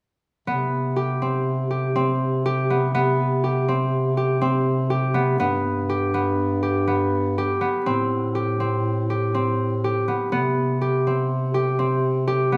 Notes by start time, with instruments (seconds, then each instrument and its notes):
0.47 bass clarinet C3, harp B3
0.96 harp G4
1.22 harp C4
1.71 harp G4
1.96 harp C4
2.46 harp G4
2.70 harp B3
2.95 harp B3
3.44 harp G4
3.68 harp C4
4.17 harp G4
4.41 harp C4
4.90 harp G4
5.14 harp B3
5.40 bass clarinet G2, harp B3
5.89 harp G4
6.14 harp B3
6.63 harp G4
6.87 harp B3
7.38 harp G4
7.61 harp B3
7.86 bass clarinet A2, harp C4
8.35 harp G4
8.60 harp C4
9.10 harp G4
9.34 harp C4
9.84 harp G4
10.08 harp B3
10.32 bass clarinet C3, harp B3
10.81 harp G4
11.07 harp C4
11.54 harp G4
11.79 harp C4
12.27 harp G4
12.52 harp B3